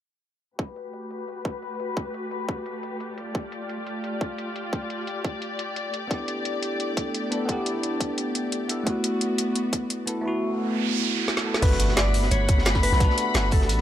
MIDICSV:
0, 0, Header, 1, 8, 480
1, 0, Start_track
1, 0, Key_signature, 1, "major"
1, 0, Tempo, 344828
1, 823, Time_signature, 4, 2, 24, 8
1, 19226, End_track
2, 0, Start_track
2, 0, Title_t, "Clean electric guitar"
2, 0, Program_c, 0, 27
2, 16185, Note_on_c, 0, 71, 102
2, 16630, Note_off_c, 0, 71, 0
2, 16664, Note_on_c, 0, 74, 109
2, 17109, Note_off_c, 0, 74, 0
2, 17139, Note_on_c, 0, 73, 103
2, 17856, Note_off_c, 0, 73, 0
2, 17862, Note_on_c, 0, 71, 99
2, 18821, Note_on_c, 0, 69, 79
2, 18851, Note_off_c, 0, 71, 0
2, 19226, Note_off_c, 0, 69, 0
2, 19226, End_track
3, 0, Start_track
3, 0, Title_t, "String section"
3, 0, Program_c, 1, 48
3, 820, Note_on_c, 1, 57, 76
3, 820, Note_on_c, 1, 66, 64
3, 820, Note_on_c, 1, 71, 85
3, 821, Note_on_c, 1, 67, 68
3, 4385, Note_off_c, 1, 66, 0
3, 4385, Note_off_c, 1, 71, 0
3, 4419, Note_on_c, 1, 65, 68
3, 4420, Note_on_c, 1, 74, 78
3, 8205, Note_off_c, 1, 57, 0
3, 8222, Note_off_c, 1, 65, 0
3, 8262, Note_on_c, 1, 57, 73
3, 12286, Note_off_c, 1, 67, 0
3, 12301, Note_off_c, 1, 57, 0
3, 12341, Note_on_c, 1, 59, 78
3, 12341, Note_on_c, 1, 66, 70
3, 14205, Note_off_c, 1, 74, 0
3, 14242, Note_off_c, 1, 59, 0
3, 14242, Note_off_c, 1, 66, 0
3, 16184, Note_on_c, 1, 78, 77
3, 16184, Note_on_c, 1, 83, 94
3, 16185, Note_on_c, 1, 69, 82
3, 19226, Note_off_c, 1, 69, 0
3, 19226, Note_off_c, 1, 78, 0
3, 19226, Note_off_c, 1, 83, 0
3, 19226, End_track
4, 0, Start_track
4, 0, Title_t, "Tine electric piano"
4, 0, Program_c, 2, 4
4, 8458, Note_on_c, 2, 59, 83
4, 8485, Note_on_c, 2, 62, 79
4, 8514, Note_on_c, 2, 64, 80
4, 8527, Control_c, 2, 64, 127
4, 8545, Note_on_c, 2, 67, 99
4, 10133, Note_off_c, 2, 59, 0
4, 10147, Note_off_c, 2, 62, 0
4, 10161, Note_off_c, 2, 64, 0
4, 10161, Note_on_c, 2, 59, 73
4, 10176, Note_off_c, 2, 67, 0
4, 10176, Note_on_c, 2, 62, 65
4, 10191, Note_on_c, 2, 64, 62
4, 10207, Note_on_c, 2, 69, 78
4, 10363, Note_off_c, 2, 59, 0
4, 10380, Note_on_c, 2, 59, 90
4, 10392, Note_off_c, 2, 62, 0
4, 10399, Note_off_c, 2, 64, 0
4, 10407, Note_off_c, 2, 69, 0
4, 10409, Note_on_c, 2, 62, 84
4, 10438, Note_on_c, 2, 64, 81
4, 10468, Note_on_c, 2, 67, 97
4, 12054, Note_off_c, 2, 59, 0
4, 12068, Note_off_c, 2, 62, 0
4, 12081, Note_on_c, 2, 59, 67
4, 12083, Note_off_c, 2, 64, 0
4, 12095, Note_on_c, 2, 62, 64
4, 12098, Note_off_c, 2, 67, 0
4, 12109, Note_on_c, 2, 64, 62
4, 12123, Note_on_c, 2, 69, 79
4, 12296, Note_on_c, 2, 57, 91
4, 12305, Note_off_c, 2, 59, 0
4, 12312, Note_off_c, 2, 62, 0
4, 12318, Note_off_c, 2, 64, 0
4, 12325, Note_off_c, 2, 69, 0
4, 12326, Note_on_c, 2, 59, 86
4, 12355, Note_on_c, 2, 64, 83
4, 12358, Control_c, 2, 64, 0
4, 12383, Note_on_c, 2, 66, 102
4, 12635, Control_c, 2, 64, 127
4, 13972, Note_off_c, 2, 57, 0
4, 13987, Note_off_c, 2, 59, 0
4, 14000, Note_on_c, 2, 57, 69
4, 14001, Note_off_c, 2, 64, 0
4, 14012, Note_on_c, 2, 59, 65
4, 14015, Note_off_c, 2, 66, 0
4, 14026, Note_on_c, 2, 64, 66
4, 14041, Note_on_c, 2, 69, 83
4, 14200, Note_off_c, 2, 57, 0
4, 14217, Note_on_c, 2, 57, 93
4, 14230, Note_off_c, 2, 59, 0
4, 14237, Note_off_c, 2, 64, 0
4, 14244, Note_off_c, 2, 69, 0
4, 14246, Note_on_c, 2, 59, 83
4, 14275, Note_on_c, 2, 64, 83
4, 14304, Note_on_c, 2, 66, 106
4, 15892, Note_off_c, 2, 57, 0
4, 15907, Note_off_c, 2, 59, 0
4, 15919, Note_on_c, 2, 57, 74
4, 15922, Note_off_c, 2, 64, 0
4, 15935, Note_on_c, 2, 59, 69
4, 15936, Note_off_c, 2, 66, 0
4, 15950, Note_on_c, 2, 64, 64
4, 15964, Note_on_c, 2, 69, 80
4, 16122, Note_off_c, 2, 57, 0
4, 16139, Note_on_c, 2, 57, 101
4, 16151, Note_off_c, 2, 59, 0
4, 16159, Note_off_c, 2, 64, 0
4, 16166, Note_off_c, 2, 69, 0
4, 16167, Note_on_c, 2, 59, 88
4, 16195, Note_on_c, 2, 62, 93
4, 16201, Control_c, 2, 64, 0
4, 16226, Note_on_c, 2, 66, 105
4, 16431, Control_c, 2, 64, 127
4, 17813, Note_off_c, 2, 57, 0
4, 17827, Note_off_c, 2, 59, 0
4, 17838, Note_on_c, 2, 57, 73
4, 17841, Note_off_c, 2, 62, 0
4, 17852, Note_on_c, 2, 59, 68
4, 17857, Note_off_c, 2, 66, 0
4, 17868, Note_on_c, 2, 62, 68
4, 17882, Note_on_c, 2, 67, 83
4, 18039, Note_off_c, 2, 57, 0
4, 18056, Note_on_c, 2, 57, 91
4, 18070, Note_off_c, 2, 59, 0
4, 18078, Note_off_c, 2, 62, 0
4, 18085, Note_off_c, 2, 67, 0
4, 18086, Note_on_c, 2, 59, 88
4, 18114, Note_on_c, 2, 62, 94
4, 18144, Note_on_c, 2, 66, 108
4, 19226, Note_off_c, 2, 57, 0
4, 19226, Note_off_c, 2, 59, 0
4, 19226, Note_off_c, 2, 62, 0
4, 19226, Note_off_c, 2, 66, 0
4, 19226, End_track
5, 0, Start_track
5, 0, Title_t, "808-style bass"
5, 0, Program_c, 3, 38
5, 16180, Note_on_c, 3, 31, 99
5, 17123, Note_off_c, 3, 31, 0
5, 17142, Note_on_c, 3, 31, 99
5, 17969, Note_off_c, 3, 31, 0
5, 17988, Note_on_c, 3, 35, 84
5, 18203, Note_off_c, 3, 35, 0
5, 18580, Note_on_c, 3, 31, 100
5, 19061, Note_on_c, 3, 33, 89
5, 19082, Note_off_c, 3, 31, 0
5, 19226, Note_off_c, 3, 33, 0
5, 19226, End_track
6, 0, Start_track
6, 0, Title_t, "Impact"
6, 0, Program_c, 4, 103
6, 16181, Note_on_c, 4, 60, 77
6, 18102, Note_off_c, 4, 60, 0
6, 19226, End_track
7, 0, Start_track
7, 0, Title_t, "Noise sweep"
7, 0, Program_c, 5, 103
7, 14261, Note_on_c, 5, 60, 74
7, 16182, Note_off_c, 5, 60, 0
7, 19226, End_track
8, 0, Start_track
8, 0, Title_t, "Drums"
8, 820, Note_on_c, 9, 36, 106
8, 959, Note_off_c, 9, 36, 0
8, 1060, Note_on_c, 9, 42, 88
8, 1199, Note_off_c, 9, 42, 0
8, 1299, Note_on_c, 9, 42, 77
8, 1439, Note_off_c, 9, 42, 0
8, 1540, Note_on_c, 9, 42, 85
8, 1679, Note_off_c, 9, 42, 0
8, 1781, Note_on_c, 9, 42, 76
8, 1920, Note_off_c, 9, 42, 0
8, 2019, Note_on_c, 9, 36, 96
8, 2021, Note_on_c, 9, 42, 88
8, 2159, Note_off_c, 9, 36, 0
8, 2160, Note_off_c, 9, 42, 0
8, 2260, Note_on_c, 9, 42, 77
8, 2400, Note_off_c, 9, 42, 0
8, 2501, Note_on_c, 9, 42, 84
8, 2641, Note_off_c, 9, 42, 0
8, 2739, Note_on_c, 9, 36, 114
8, 2879, Note_off_c, 9, 36, 0
8, 2981, Note_on_c, 9, 42, 90
8, 3120, Note_off_c, 9, 42, 0
8, 3220, Note_on_c, 9, 42, 75
8, 3360, Note_off_c, 9, 42, 0
8, 3460, Note_on_c, 9, 42, 84
8, 3461, Note_on_c, 9, 36, 98
8, 3599, Note_off_c, 9, 42, 0
8, 3600, Note_off_c, 9, 36, 0
8, 3701, Note_on_c, 9, 42, 75
8, 3841, Note_off_c, 9, 42, 0
8, 3941, Note_on_c, 9, 42, 86
8, 4080, Note_off_c, 9, 42, 0
8, 4181, Note_on_c, 9, 42, 78
8, 4320, Note_off_c, 9, 42, 0
8, 4422, Note_on_c, 9, 42, 86
8, 4561, Note_off_c, 9, 42, 0
8, 4662, Note_on_c, 9, 36, 110
8, 4662, Note_on_c, 9, 42, 71
8, 4801, Note_off_c, 9, 36, 0
8, 4801, Note_off_c, 9, 42, 0
8, 4902, Note_on_c, 9, 42, 82
8, 5041, Note_off_c, 9, 42, 0
8, 5142, Note_on_c, 9, 42, 74
8, 5281, Note_off_c, 9, 42, 0
8, 5382, Note_on_c, 9, 42, 82
8, 5521, Note_off_c, 9, 42, 0
8, 5622, Note_on_c, 9, 42, 71
8, 5761, Note_off_c, 9, 42, 0
8, 5862, Note_on_c, 9, 36, 105
8, 5862, Note_on_c, 9, 42, 84
8, 6001, Note_off_c, 9, 36, 0
8, 6002, Note_off_c, 9, 42, 0
8, 6103, Note_on_c, 9, 42, 79
8, 6242, Note_off_c, 9, 42, 0
8, 6343, Note_on_c, 9, 42, 88
8, 6483, Note_off_c, 9, 42, 0
8, 6582, Note_on_c, 9, 36, 114
8, 6582, Note_on_c, 9, 42, 70
8, 6721, Note_off_c, 9, 36, 0
8, 6721, Note_off_c, 9, 42, 0
8, 6822, Note_on_c, 9, 42, 82
8, 6961, Note_off_c, 9, 42, 0
8, 7062, Note_on_c, 9, 42, 74
8, 7201, Note_off_c, 9, 42, 0
8, 7302, Note_on_c, 9, 36, 107
8, 7302, Note_on_c, 9, 42, 78
8, 7441, Note_off_c, 9, 36, 0
8, 7441, Note_off_c, 9, 42, 0
8, 7542, Note_on_c, 9, 42, 69
8, 7681, Note_off_c, 9, 42, 0
8, 7782, Note_on_c, 9, 42, 84
8, 7921, Note_off_c, 9, 42, 0
8, 8022, Note_on_c, 9, 42, 77
8, 8161, Note_off_c, 9, 42, 0
8, 8264, Note_on_c, 9, 42, 80
8, 8403, Note_off_c, 9, 42, 0
8, 8502, Note_on_c, 9, 36, 107
8, 8503, Note_on_c, 9, 42, 68
8, 8641, Note_off_c, 9, 36, 0
8, 8643, Note_off_c, 9, 42, 0
8, 8742, Note_on_c, 9, 42, 84
8, 8882, Note_off_c, 9, 42, 0
8, 8983, Note_on_c, 9, 42, 67
8, 9122, Note_off_c, 9, 42, 0
8, 9223, Note_on_c, 9, 42, 81
8, 9362, Note_off_c, 9, 42, 0
8, 9464, Note_on_c, 9, 42, 73
8, 9603, Note_off_c, 9, 42, 0
8, 9703, Note_on_c, 9, 36, 104
8, 9705, Note_on_c, 9, 42, 81
8, 9842, Note_off_c, 9, 36, 0
8, 9844, Note_off_c, 9, 42, 0
8, 9945, Note_on_c, 9, 42, 76
8, 10085, Note_off_c, 9, 42, 0
8, 10187, Note_on_c, 9, 42, 82
8, 10326, Note_off_c, 9, 42, 0
8, 10423, Note_on_c, 9, 36, 107
8, 10427, Note_on_c, 9, 42, 74
8, 10562, Note_off_c, 9, 36, 0
8, 10566, Note_off_c, 9, 42, 0
8, 10665, Note_on_c, 9, 42, 81
8, 10804, Note_off_c, 9, 42, 0
8, 10905, Note_on_c, 9, 42, 73
8, 11044, Note_off_c, 9, 42, 0
8, 11143, Note_on_c, 9, 36, 94
8, 11145, Note_on_c, 9, 42, 87
8, 11282, Note_off_c, 9, 36, 0
8, 11284, Note_off_c, 9, 42, 0
8, 11384, Note_on_c, 9, 42, 73
8, 11523, Note_off_c, 9, 42, 0
8, 11624, Note_on_c, 9, 42, 86
8, 11763, Note_off_c, 9, 42, 0
8, 11863, Note_on_c, 9, 42, 80
8, 12002, Note_off_c, 9, 42, 0
8, 12102, Note_on_c, 9, 42, 80
8, 12241, Note_off_c, 9, 42, 0
8, 12341, Note_on_c, 9, 36, 103
8, 12342, Note_on_c, 9, 42, 73
8, 12480, Note_off_c, 9, 36, 0
8, 12481, Note_off_c, 9, 42, 0
8, 12582, Note_on_c, 9, 42, 91
8, 12722, Note_off_c, 9, 42, 0
8, 12822, Note_on_c, 9, 42, 76
8, 12961, Note_off_c, 9, 42, 0
8, 13062, Note_on_c, 9, 42, 91
8, 13202, Note_off_c, 9, 42, 0
8, 13301, Note_on_c, 9, 42, 77
8, 13440, Note_off_c, 9, 42, 0
8, 13541, Note_on_c, 9, 36, 95
8, 13542, Note_on_c, 9, 42, 89
8, 13680, Note_off_c, 9, 36, 0
8, 13681, Note_off_c, 9, 42, 0
8, 13783, Note_on_c, 9, 42, 78
8, 13922, Note_off_c, 9, 42, 0
8, 14023, Note_on_c, 9, 42, 86
8, 14162, Note_off_c, 9, 42, 0
8, 15702, Note_on_c, 9, 38, 59
8, 15828, Note_off_c, 9, 38, 0
8, 15828, Note_on_c, 9, 38, 59
8, 15967, Note_off_c, 9, 38, 0
8, 16069, Note_on_c, 9, 38, 77
8, 16181, Note_on_c, 9, 36, 117
8, 16181, Note_on_c, 9, 42, 84
8, 16181, Note_on_c, 9, 49, 105
8, 16190, Note_off_c, 9, 42, 0
8, 16190, Note_on_c, 9, 42, 99
8, 16208, Note_off_c, 9, 38, 0
8, 16300, Note_on_c, 9, 38, 50
8, 16320, Note_off_c, 9, 36, 0
8, 16320, Note_off_c, 9, 49, 0
8, 16329, Note_off_c, 9, 42, 0
8, 16421, Note_on_c, 9, 42, 99
8, 16435, Note_off_c, 9, 42, 0
8, 16435, Note_on_c, 9, 42, 72
8, 16439, Note_off_c, 9, 38, 0
8, 16544, Note_on_c, 9, 38, 49
8, 16575, Note_off_c, 9, 42, 0
8, 16656, Note_off_c, 9, 38, 0
8, 16656, Note_on_c, 9, 38, 109
8, 16661, Note_off_c, 9, 38, 0
8, 16661, Note_on_c, 9, 38, 115
8, 16661, Note_on_c, 9, 42, 97
8, 16800, Note_off_c, 9, 38, 0
8, 16801, Note_off_c, 9, 42, 0
8, 16900, Note_on_c, 9, 46, 78
8, 16901, Note_on_c, 9, 42, 71
8, 17015, Note_on_c, 9, 38, 55
8, 17040, Note_off_c, 9, 42, 0
8, 17040, Note_off_c, 9, 46, 0
8, 17132, Note_on_c, 9, 42, 81
8, 17141, Note_off_c, 9, 42, 0
8, 17141, Note_on_c, 9, 42, 83
8, 17154, Note_off_c, 9, 38, 0
8, 17281, Note_off_c, 9, 42, 0
8, 17376, Note_on_c, 9, 42, 67
8, 17380, Note_off_c, 9, 42, 0
8, 17380, Note_on_c, 9, 42, 92
8, 17381, Note_on_c, 9, 36, 103
8, 17515, Note_on_c, 9, 38, 48
8, 17520, Note_off_c, 9, 36, 0
8, 17520, Note_off_c, 9, 42, 0
8, 17610, Note_on_c, 9, 42, 85
8, 17622, Note_off_c, 9, 38, 0
8, 17622, Note_off_c, 9, 42, 0
8, 17622, Note_on_c, 9, 38, 127
8, 17622, Note_on_c, 9, 42, 88
8, 17627, Note_off_c, 9, 38, 0
8, 17627, Note_on_c, 9, 38, 119
8, 17745, Note_off_c, 9, 38, 0
8, 17745, Note_on_c, 9, 38, 49
8, 17748, Note_on_c, 9, 36, 61
8, 17749, Note_on_c, 9, 40, 59
8, 17761, Note_off_c, 9, 42, 0
8, 17858, Note_on_c, 9, 42, 67
8, 17862, Note_on_c, 9, 46, 77
8, 17884, Note_off_c, 9, 38, 0
8, 17887, Note_off_c, 9, 36, 0
8, 17888, Note_off_c, 9, 40, 0
8, 17994, Note_on_c, 9, 38, 60
8, 17997, Note_off_c, 9, 42, 0
8, 18001, Note_off_c, 9, 46, 0
8, 18101, Note_on_c, 9, 36, 125
8, 18103, Note_on_c, 9, 42, 101
8, 18133, Note_off_c, 9, 38, 0
8, 18233, Note_on_c, 9, 38, 37
8, 18240, Note_off_c, 9, 36, 0
8, 18242, Note_off_c, 9, 42, 0
8, 18341, Note_on_c, 9, 42, 71
8, 18342, Note_off_c, 9, 42, 0
8, 18342, Note_on_c, 9, 42, 93
8, 18372, Note_off_c, 9, 38, 0
8, 18481, Note_off_c, 9, 42, 0
8, 18571, Note_on_c, 9, 42, 100
8, 18582, Note_off_c, 9, 42, 0
8, 18582, Note_on_c, 9, 38, 124
8, 18582, Note_on_c, 9, 42, 81
8, 18721, Note_off_c, 9, 38, 0
8, 18721, Note_off_c, 9, 42, 0
8, 18808, Note_on_c, 9, 42, 68
8, 18821, Note_on_c, 9, 36, 114
8, 18821, Note_on_c, 9, 46, 74
8, 18944, Note_on_c, 9, 38, 54
8, 18947, Note_off_c, 9, 42, 0
8, 18960, Note_off_c, 9, 36, 0
8, 18961, Note_off_c, 9, 46, 0
8, 19061, Note_on_c, 9, 42, 85
8, 19065, Note_off_c, 9, 42, 0
8, 19065, Note_on_c, 9, 42, 100
8, 19083, Note_off_c, 9, 38, 0
8, 19178, Note_on_c, 9, 38, 44
8, 19205, Note_off_c, 9, 42, 0
8, 19226, Note_off_c, 9, 38, 0
8, 19226, End_track
0, 0, End_of_file